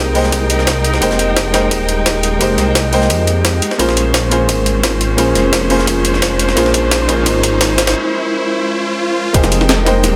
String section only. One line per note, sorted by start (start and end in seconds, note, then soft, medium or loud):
0.00 9.30 G#3 medium
0.00 3.75 D#4 medium
0.00 3.75 A#4 medium
0.00 3.75 G5 medium
3.79 9.30 C#4 medium
3.79 9.30 C5 medium
9.34 10.16 G#3 medium
9.34 10.16 A#3 medium
9.34 10.16 D#4 medium
9.34 10.16 G5 medium